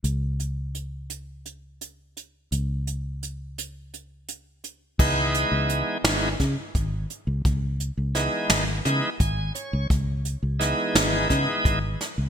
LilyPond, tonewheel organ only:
\new Staff \with { instrumentName = "Tonewheel organ" } { \time 7/8 \key cis \minor \tempo 4 = 85 r2. r8 | r2. r8 | <e gis b dis'>4. <e gis b dis'>8 r4. | r4 <e gis b dis'>8 r8 <e gis b dis'>8 gis''8 cis''8 |
r4 <e gis b dis'>4 <e gis b dis'>8 r4 | }